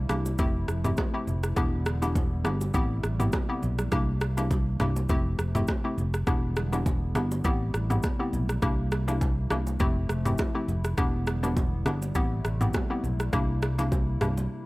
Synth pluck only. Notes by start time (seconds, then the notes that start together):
0.09 A#3 D4 E4 G4
0.39 A3 C4 E4 G4
0.84 A3 C4 E4 G4
1.14 A3 C4 E4 G4
1.56 B3 D4 E4 G4
2.02 B3 D4 E4 G4
2.45 B3 D4 E4 G4
2.74 B3 C4 E4 G4
3.19 B3 C4 E4 G4
3.49 B3 C4 E4 G4
3.92 A#3 D4 E4 G4
4.37 A#3 D4 E4 G4
4.80 A#3 D4 E4 G4
5.09 A3 C4 E4 G4
5.55 A3 C4 E4 G4
5.84 A3 C4 E4 G4
6.27 B3 D4 E4 G4
6.72 B3 D4 E4 G4
7.15 B3 D4 E4 G4
7.44 B3 C4 E4 G4
7.90 B3 C4 E4 G4
8.19 B3 C4 E4 G4
8.62 A#3 D4 E4 G4
9.08 A#3 D4 E4 G4
9.50 A#3 D4 E4 G4
9.80 A3 C4 E4 G4
10.25 A3 C4 E4 G4
10.55 A3 C4 E4 G4
10.97 B3 D4 E4 G4
11.43 B3 D4 E4 G4
11.86 B3 D4 E4 G4
12.15 B3 C4 E4 G4
12.61 B3 C4 E4 G4
12.90 B3 C4 E4 G4
13.33 A#3 D4 E4 G4
13.78 A#3 D4 E4 G4
14.21 A#3 D4 E4 G4